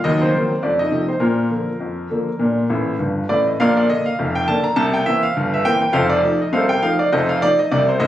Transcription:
0.04 0.30 D#2 medium
0.04 0.22 F#3 medium
0.04 0.21 D#4 medium
0.04 0.21 D#5 loud
0.22 0.61 C4 medium
0.22 0.62 C5 medium
0.34 0.51 D#3 medium
0.34 0.51 F#3 medium
0.34 0.51 A#3 medium
0.63 0.89 F2 medium
0.63 0.81 A3 medium
0.63 0.79 D4 medium
0.63 0.80 D5 medium
0.79 1.08 D#4 medium
0.79 1.04 D#5 medium
0.91 1.08 C3 medium
0.91 1.09 F3 medium
0.91 1.09 A3 medium
1.08 1.22 C4 medium
1.08 1.22 C5 medium
1.20 1.47 A#2 medium
1.20 1.49 A#3 medium
1.20 1.39 D4 soft
1.20 2.96 F4 medium
1.20 2.96 A#4 medium
1.50 1.68 D3 soft
1.50 1.68 F3 soft
1.50 1.68 A#3 soft
1.80 2.07 F2 medium
2.10 2.27 D3 soft
2.10 2.27 F3 soft
2.10 2.28 A#3 medium
2.39 2.66 A#2 medium
2.39 2.58 D4 soft
2.70 2.93 A1 medium
2.70 2.93 A2 medium
2.99 3.22 G1 medium
2.99 3.22 G2 medium
3.29 3.52 A1 medium
3.29 3.52 A2 medium
3.29 3.47 D5 medium
3.47 3.60 D#5 medium
3.60 3.85 A#1 medium
3.60 3.85 A#2 loud
3.60 3.76 A#4 medium
3.60 3.75 D5 medium
3.60 3.77 F5 loud
3.77 3.90 D5 loud
3.90 4.06 D3 medium
3.90 4.07 A#3 medium
3.90 4.06 D4 medium
3.90 4.06 D#5 loud
4.06 4.34 F5 loud
4.19 4.44 F1 medium
4.19 4.44 F2 medium
4.35 4.48 G5 loud
4.48 4.64 D3 medium
4.48 4.64 A#3 medium
4.48 4.65 D4 medium
4.48 4.65 A5 loud
4.64 4.77 A#5 medium
4.76 5.02 C2 medium
4.76 5.02 C3 loud
4.76 4.94 A5 loud
4.94 5.07 G5 loud
5.06 5.23 E3 medium
5.06 5.23 A#3 medium
5.06 5.23 C4 medium
5.06 5.23 E5 loud
5.23 5.51 F5 loud
5.37 5.62 G1 medium
5.37 5.62 G2 medium
5.54 5.66 E5 medium
5.65 5.82 E3 medium
5.65 5.82 A#3 medium
5.65 5.82 C4 medium
5.65 5.80 G5 loud
5.82 5.95 G5 medium
5.93 6.19 F1 medium
5.93 6.19 F2 loud
5.93 6.10 A4 medium
5.93 6.10 C5 medium
5.93 6.11 F5 loud
6.09 6.39 D5 loud
6.23 6.40 F3 medium
6.23 6.40 A3 medium
6.23 6.40 D#4 medium
6.42 6.54 D#5 medium
6.53 6.78 C2 medium
6.53 6.78 C3 medium
6.53 6.69 A4 medium
6.53 6.69 C5 medium
6.53 6.70 F5 loud
6.69 6.83 G5 loud
6.83 6.99 F3 medium
6.83 6.99 A3 medium
6.83 6.99 D#4 medium
6.83 7.00 F5 loud
6.99 7.12 D5 medium
7.12 7.38 F1 medium
7.12 7.38 F2 loud
7.12 7.29 A4 medium
7.12 7.29 C5 medium
7.12 7.29 D#5 loud
7.29 7.42 F5 loud
7.42 7.59 F3 medium
7.42 7.59 A3 medium
7.42 7.59 D#4 medium
7.42 7.59 D5 loud
7.59 7.72 D#5 medium
7.71 7.97 C2 medium
7.71 7.96 C3 medium
7.71 7.88 D5 loud
7.89 8.01 C5 medium
8.00 8.07 A1 loud
8.00 8.07 A2 loud
8.00 8.07 D#5 loud

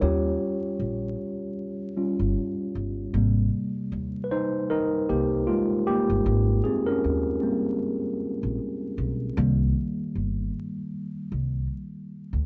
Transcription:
0.02 0.36 D#2 loud
0.02 1.15 G3 medium
0.02 1.15 C#4 soft
0.02 1.15 F4 medium
0.02 0.77 G4 medium
0.02 0.76 C#5 medium
0.79 1.14 A#1 medium
1.97 2.32 G3 medium
1.97 2.32 C#4 soft
1.97 2.32 F4 medium
2.19 2.34 G1 medium
2.75 3.09 G1 medium
3.14 3.48 G#1 loud
3.14 6.21 C3 soft
3.14 6.21 G3 medium
3.14 5.09 A#3 medium
3.92 4.26 D#2 medium
4.24 4.30 B4 medium
4.31 4.67 D#4 medium
4.31 4.67 C5 medium
4.70 5.06 D#4 medium
4.70 5.10 A#4 loud
5.09 5.43 C2 medium
5.09 5.27 A#3 medium
5.09 5.27 G4 medium
5.47 5.66 G#3 medium
5.47 5.65 F4 medium
5.87 6.61 A#3 medium
5.87 6.67 G4 loud
6.10 6.24 G1 medium
6.26 6.60 G#1 loud
6.64 6.76 C4 medium
6.64 6.74 G#4 medium
6.86 8.39 C#4 medium
6.86 8.38 A#4 medium
7.04 7.38 D#2 medium
7.42 7.96 G3 soft
7.42 7.97 A#3 medium
7.42 7.96 C4 medium
8.43 8.57 A#1 medium
8.98 9.32 B1 medium
9.37 9.71 C2 loud
9.37 12.44 D#3 medium
9.37 12.45 G3 medium
9.37 12.45 A#3 medium
10.15 10.49 G1 medium
11.32 11.66 C2 medium
12.33 12.46 D2 medium

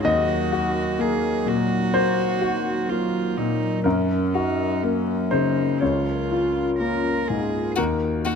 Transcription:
0.04 1.90 D#2 medium
0.04 5.81 F#3 medium
0.04 3.81 D#4 medium
0.04 1.02 F#4 medium
0.04 5.79 A#4 medium
0.04 1.91 D#5 medium
0.52 1.29 F#4 soft
0.99 1.75 A#3 soft
0.99 1.50 G#4 medium
1.46 2.22 A#2 soft
1.46 2.91 F#4 medium
1.94 2.70 A#3 soft
1.94 3.80 C5 medium
2.41 3.17 F#4 soft
2.89 3.65 A#3 soft
2.89 3.39 F4 soft
3.37 3.85 A#2 soft
3.37 3.85 D#4 soft
3.84 5.77 F#2 soft
3.84 7.78 C#4 medium
3.84 4.36 C#4 soft
3.84 5.27 A#4 soft
4.34 4.85 D#4 soft
4.34 5.12 F#4 soft
4.84 5.62 A#3 soft
4.84 5.33 C#4 soft
5.31 5.82 C#3 soft
5.31 5.82 D#4 soft
5.31 5.77 C5 soft
5.80 7.74 C#2 soft
5.80 6.70 F4 soft
5.80 7.78 F4 soft
5.80 7.74 A#4 soft
5.80 6.76 C#5 soft
6.31 7.10 F4 soft
6.80 7.58 A#3 soft
6.80 7.29 A#4 soft
7.28 7.78 G#2 soft
7.28 7.76 G#4 soft
7.76 8.35 D#2 medium
7.76 7.84 A#3 soft
7.76 8.35 D#4 soft
7.76 7.84 F#4 soft
7.76 8.35 F#4 medium
7.76 8.35 A#4 medium
8.25 8.33 A#3 soft
8.25 8.33 F#4 soft

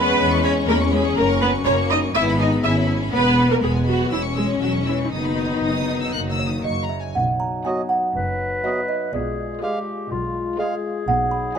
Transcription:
0.00 0.14 E2 medium
0.00 1.12 G#3 medium
0.00 0.42 B3 medium
0.00 0.18 C#4 medium
0.00 2.10 C#4 medium
0.00 0.42 B4 loud
0.07 0.19 C#6 medium
0.18 0.62 E2 medium
0.18 1.63 C#4 medium
0.18 0.30 B5 medium
0.31 0.43 C#6 medium
0.42 0.51 C#4 medium
0.42 0.52 C#5 medium
0.42 0.55 B5 medium
0.56 0.68 C#6 medium
0.68 1.11 E2 medium
0.68 0.76 A#3 medium
0.68 0.76 A#4 loud
0.68 0.79 B5 medium
0.80 0.92 C#6 medium
0.92 1.00 G#3 medium
0.92 1.16 G#4 medium
0.92 1.04 B5 medium
1.04 1.17 C#6 medium
1.17 1.60 F#1 medium
1.17 2.15 F#3 medium
1.17 1.25 A#3 medium
1.17 1.41 A#4 loud
1.17 1.28 A#5 medium
1.28 1.41 C#6 medium
1.41 1.50 B3 medium
1.41 1.49 B4 medium
1.41 1.53 A#5 medium
1.53 1.66 C#6 medium
1.66 2.09 F#1 medium
1.66 2.14 A#3 medium
1.66 1.74 C#4 medium
1.66 1.74 C#5 loud
1.66 1.78 A#5 medium
1.78 1.90 C#6 medium
1.90 1.98 D#4 medium
1.90 1.99 D#5 medium
1.90 2.02 A#5 soft
2.02 2.15 C#6 medium
2.14 2.58 G#1 medium
2.14 2.96 G#3 medium
2.14 2.96 B3 medium
2.14 2.63 B3 medium
2.14 2.39 E4 medium
2.14 2.23 E5 loud
2.14 2.26 G#5 medium
2.27 2.39 B5 medium
2.40 2.63 D#4 medium
2.40 2.48 D#5 medium
2.40 2.52 G#5 medium
2.52 2.64 B5 soft
2.64 3.07 G#1 medium
2.64 3.11 C#4 medium
2.64 2.88 E4 medium
2.64 2.72 E5 medium
2.64 2.75 G#5 medium
2.76 2.88 B5 soft
2.89 3.00 G#5 soft
3.01 3.12 B5 medium
3.12 3.56 E1 medium
3.12 3.58 G#3 medium
3.12 3.46 B3 medium
3.12 3.61 B3 medium
3.12 3.58 B3 medium
3.12 3.47 B4 loud
3.12 3.24 B5 medium
3.25 3.37 G#5 medium
3.38 3.49 B5 soft
3.49 3.61 A#3 medium
3.49 3.55 A#4 medium
3.49 3.62 G#5 soft
3.61 4.05 E1 medium
3.61 3.86 G#3 medium
3.61 4.11 G#3 medium
3.61 4.10 B3 medium
3.61 3.71 G#4 medium
3.61 3.73 B5 medium
3.74 3.86 G#5 soft
3.86 4.10 F#3 medium
3.86 4.11 F#4 medium
3.86 3.98 B5 soft
3.98 4.10 G#5 soft
4.11 4.55 E1 medium
4.11 4.19 E3 medium
4.11 5.10 G#3 medium
4.11 5.12 C#4 medium
4.11 4.20 E4 medium
4.11 4.22 E6 medium
4.23 4.36 C#6 medium
4.35 4.60 G#3 medium
4.35 4.45 G#4 medium
4.35 4.48 E6 medium
4.48 4.61 C#6 soft
4.60 5.06 E1 medium
4.60 4.86 F#3 medium
4.60 4.69 F#4 medium
4.60 4.72 E6 soft
4.73 4.86 C#6 soft
4.86 5.11 E3 medium
4.86 4.94 E4 medium
4.86 4.99 E6 soft
4.98 5.12 C#6 soft
5.05 5.12 E4 soft
5.12 5.57 F#1 medium
5.12 6.62 D#3 medium
5.12 6.12 F#3 soft
5.12 6.12 B3 soft
5.12 6.65 D#4 medium
5.12 6.87 D#4 medium
5.12 5.24 D#6 soft
5.24 5.37 B5 soft
5.38 5.50 D#6 soft
5.50 5.63 B5 soft
5.63 6.08 F#1 medium
5.63 5.98 D#6 medium
6.01 6.14 E6 medium
6.13 6.59 F#1 medium
6.13 6.89 F#3 medium
6.13 6.89 A#3 medium
6.13 6.20 F#6 medium
6.31 6.48 E6 medium
6.39 6.63 C#5 medium
6.48 6.65 D#6 medium
6.64 7.10 F#1 soft
6.64 6.88 D#5 soft
6.64 6.82 C#6 medium
6.83 7.00 A#5 medium
6.89 7.14 E5 medium
7.00 7.17 G#5 soft
7.15 7.56 B1 medium
7.15 7.56 B2 medium
7.15 9.10 F#3 soft
7.15 9.10 D#4 soft
7.15 7.39 F#5 medium
7.40 7.63 A#5 medium
7.65 7.82 F#3 soft
7.65 8.03 B3 soft
7.65 8.03 F#4 medium
7.65 8.02 D#5 medium
7.65 7.82 D#5 soft
7.65 7.88 G#5 medium
7.89 8.60 F#5 medium
8.15 8.54 F#1 medium
8.15 8.54 F#2 medium
8.15 9.10 B4 medium
8.64 8.80 F#3 soft
8.64 9.02 B3 soft
8.64 9.02 F#4 medium
8.64 9.01 D#5 soft
8.64 8.81 D#5 soft
8.64 8.87 E5 medium
8.88 9.12 D#5 medium
9.13 9.52 B1 medium
9.13 9.52 B2 medium
9.13 11.04 G#3 soft
9.13 11.04 F4 soft
9.13 9.61 G#4 medium
9.13 10.30 D5 medium
9.62 9.78 G#3 soft
9.62 9.98 G#3 medium
9.62 9.98 F4 soft
9.62 10.09 G4 medium
9.62 9.98 B4 medium
9.62 9.79 F5 soft
10.11 10.49 B1 medium
10.11 10.49 B2 medium
10.11 10.58 F4 medium
10.59 10.75 G#3 soft
10.59 10.95 G#3 soft
10.59 10.95 F4 medium
10.59 11.55 G#4 medium
10.59 10.95 B4 medium
10.59 10.75 F5 soft
11.08 11.46 B1 medium
11.08 11.46 B2 medium
11.08 11.59 F#3 medium
11.08 11.59 D#4 medium
11.08 11.30 F#5 medium
11.31 11.54 B5 medium
11.55 11.59 D#4 medium
11.55 11.59 G#5 medium

